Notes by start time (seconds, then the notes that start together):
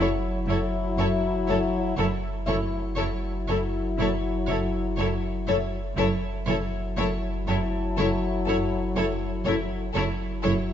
Already playing: F#1 F#3 E4 C#5 E5
0.01 C#5
0.47 F#1 F#2 E4 A4 C#5
0.97 F#1 F#2 E4 A4 C#5
1.48 F#1 F#2 E4 A4 C#5
1.98 F#1 F#2 F#3 E4 A4 C#5
2.46 F#1 F#2 E4 A4 C#5 E5
2.97 F#1 F#2 E4 A4 C#5
3.48 F#1 F#2 E4 A4 C#5
3.98 F#1 F#2 E4 A4 C#5
4.48 F#1 F#2 E4 A4 C#5
4.98 F#1 F#2 E4 A4 C#5
5.48 F#1 F#2 E4 A4 C#5
5.96 F#1 F#2 F#3 E4 A4 C#5
6.47 F#1 F#2 E4 A4 C#5
6.97 F#1 F#2 E4 A4 C#5
7.47 F#1 F#2 E4 A4 C#5 A5
7.97 F#1 F#2 E4 A4 C#5
8.46 F#1 F#2 E4 A4 C#5
8.96 F#1 F#2 E4 A4 C#5
9.46 F#1 F#2 E4 A4 C#5
9.94 F#1 F#2 F#3 E4 A4 C#5
10.42 F#1 F#2 E4 A4 C#5